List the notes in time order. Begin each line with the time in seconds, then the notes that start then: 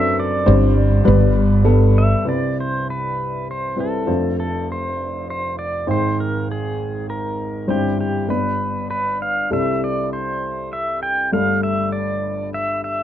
Already playing: F#1 F#2 F#3 C4 D4 A4 B4 E5
0.20 D5
0.46 G1 G2 G3 C4 D4 C5
1.04 G1 G2 G3 B3 D4 B4
1.64 G3 B3 D4 A4
1.98 E5
2.25 C2 C3 G3 C4 E4 B4 D5
2.60 C5
2.90 B4
3.51 C5
3.76 G3 C4 E4 B4
3.80 A4
4.07 F1 F2 A3 D4 F4 C5
4.40 A4
4.72 C5
5.30 C5
5.59 D5
5.87 G#1 G#2 G#3 D#4 C5 G5
6.20 A#4
6.51 G#4
7.10 A#4
7.68 G1 G2 G3 C4 E4 G4 C5
8.01 G4
8.28 G1 G2 G3 B3 D4 B4
8.91 B4
9.22 F5
9.50 C2 C3 G3 C4 E4 A4 E5
9.84 D5
10.13 C5
10.73 E5
11.03 G5
11.32 G1 G2 G3 A3 D4 A4 F5
11.63 E5
11.92 D5
12.54 E5
12.84 E5